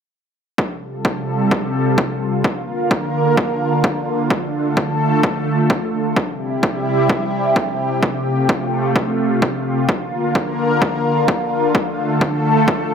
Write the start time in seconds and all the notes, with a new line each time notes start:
0.58 C3 G3 F4 A4, kick
1.05 kick
1.51 kick
1.98 kick
2.44 D3 A#3 A#4, kick
2.91 kick
3.37 kick
3.84 kick
4.30 A3 A4, kick
4.77 kick
5.23 kick
5.70 kick
6.16 C3 G3 E4 G4, kick
6.63 kick
7.10 kick
7.56 kick
8.03 A3 F4, kick
8.49 kick
8.96 kick
9.42 kick
9.89 D3 A#3 A#4, kick
10.35 kick
10.82 kick
11.28 kick
11.75 A3 A4, kick
12.21 kick
12.68 kick